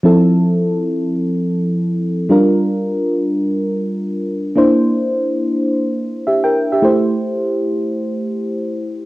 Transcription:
0.03 F3 C4 E4 A4
2.29 G3 D4 F4 A#4
4.56 A#3 D4 E4 C5
6.27 G4 E5
6.44 A#4 G5
6.72 G4 E5
6.82 A3 E4 G4 C5

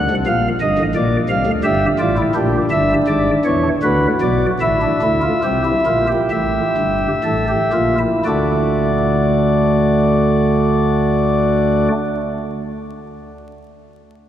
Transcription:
Already playing: F#5
0.10 C2 C3
0.27 A#1 A#2 F5
0.61 G1 G2 D#5
0.78 A1 A2
0.95 A#1 A#2 D5
1.29 C2 C3 F5
1.46 D2 D3
1.64 G1 G2 G4 E5
1.99 A1 A2 F4 D5
2.17 E4
2.35 A#1 A#2 D4 G4
2.71 G1 G2 E5
3.07 G#1 G#2 D5
3.45 E2 E3 C#5
3.83 D2 D3 F#4 B4
4.21 B1 B2 D5
4.61 A1 A2 E4 E5
4.82 D4
5.02 D2 D3 E4
5.22 F4
5.44 C2 C3 G4
5.65 E4
5.86 A#1 A#2 F4
6.08 G4
6.31 A1 A2 E5
6.77 G1 G2
7.24 A1 A2 A4
7.49 G4
7.73 A#1 A#2 F4
7.99 E4
8.25 D2 D3 A3 D4 F#4 D5

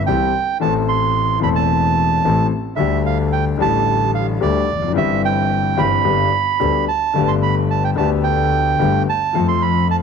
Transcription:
0.06 C2 C3 E3 G3 C4 G4 G5
0.60 A1 A2 E3 A3 C4 A4 A5
0.89 C6
1.40 E1 E2 E3 A3 C4 A4 B5
1.44 E1
1.55 A5
2.24 A1 A2 E3 A3 C4 A4
2.76 D2 D3 G3 A3 E5
2.81 G4
3.06 F5
3.33 G5
3.58 A1 A2 D3 G3 A3 G4 A5
4.15 F5
4.41 D2 D3 G3 A3 G4 D5
4.70 F1
4.75 E2
4.82 F2
4.88 F#2
4.93 G1 G2 E3 G3 C4
4.97 G4 E5
5.25 G5
5.77 G1 G2 E3 G3 C4 G4 B5
6.04 G1 G2 D3 G3 B3 G4
6.60 D2 D3 G3 B3 G4
6.88 A5
7.14 G1 G2 D3 A3 B3
7.18 G4
7.28 C6
7.43 B5
7.71 A5
7.84 G5
7.96 D2 D3 A3 B3 A5
8.00 G4
8.24 G5
8.79 G1 G2 D3 A3 B3 G4
9.09 A5
9.33 F2 F3 A3 C4 A4
9.48 C6
9.62 B5
9.91 A5

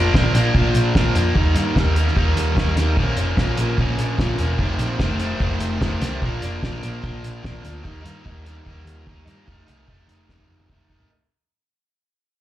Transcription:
Already playing: A#2 F3 A#3 D4
0.13 A#1 A#2 F3 A#3 D4, kick, snare
0.33 A#1 F3 A#3 D4, closed hi-hat
0.54 A#1 A#2 F3 A#3 D4, kick
0.75 A#1, closed hi-hat
0.94 A#1 A#2 F3 A#3, kick, snare
0.98 D4
1.14 F2 F3 A#3 D4, closed hi-hat
1.35 D#2 D#3 G3 A#3 D#4, kick
1.54 G2 G3 A#3 D#4, closed hi-hat
1.75 D#2 D#3 G3 A#3 D#4, kick, snare
1.95 G3 A#3 D#4, closed hi-hat
2.08 snare
2.15 D#2 D#3 G3 A#3 D#4, kick
2.35 D#2, closed hi-hat
2.56 D#2 D#3 G3 A#3 D#4, kick, snare
2.76 D#2 A#3 D#4, snare, closed hi-hat
2.80 G3
2.97 A#1 A#2 F3 A#3 C#4, kick
3.16 F1 A#3 C#4, closed hi-hat
3.21 F3
3.37 A#1 A#2 F3 A#3, kick, snare
3.42 C#4
3.57 A#1 A#3 C#4, closed hi-hat
3.62 F3
3.78 A#1 A#2 F3 A#3 C#4, kick
3.98 A#1, closed hi-hat
4.19 A#1 A#2 F3 A#3 C#4, kick, snare
4.38 E1 F3 A#3 C#4, closed hi-hat
4.58 F1 F2 C3 D#3 A3 C4, kick
4.79 A#1 D#3 A3 C4, closed hi-hat
4.99 F1 C3 D#3 A3 C4, kick, snare
5.19 D#3 A3 C4, closed hi-hat
5.39 F1 F2 C3 D#3 A3 C4, kick
5.60 F1, closed hi-hat
5.81 F1 C3 D#3 A3 C4, kick, snare
6.01 C2 D#3 A3 C4, snare, closed hi-hat
6.22 A#1 A#2 F3 A#3 D4, kick
6.42 F1 F3 A#3 D4, closed hi-hat
6.62 A#1 A#2 F3 A#3 D4, kick, snare
6.82 A#1 F3 A#3 D4, closed hi-hat
7.02 A#1 A#2 F3 A#3 D4, kick
7.23 A#1, closed hi-hat
7.42 A#1 A#2 F3 A#3 D4, kick, snare
7.63 D2 F3 A#3 D4, closed hi-hat
7.83 D#2 D#3 G3 A#3 D#4, kick
8.02 G2 G3 A#3 D#4, closed hi-hat
8.24 D#2 D#3 G3 A#3 D#4, kick
8.44 G3 A#3 D#4, closed hi-hat
8.66 D#2 D#3 G3 A#3 D#4, kick
8.85 D#2, closed hi-hat
9.06 D#2 D#3 G3 A#3 D#4, kick
9.26 G2 G3 A#3 D#4, closed hi-hat
9.46 F1 F2 C3 D#3 A3 D#4, kick
9.67 C2 D#3 A3 D#4, closed hi-hat
9.87 F1 C3 D#3 A3 D#4, kick
10.08 F1 D#3 A3 D#4, closed hi-hat
10.28 F1 F2 C3 D#3 A3 D#4, kick, snare
10.39 kick
10.48 F1
10.60 mid tom
10.69 F1 C3 D#3 A3 D#4, kick
10.89 F1 A3 D#4, kick
10.94 D#3
11.00 floor tom

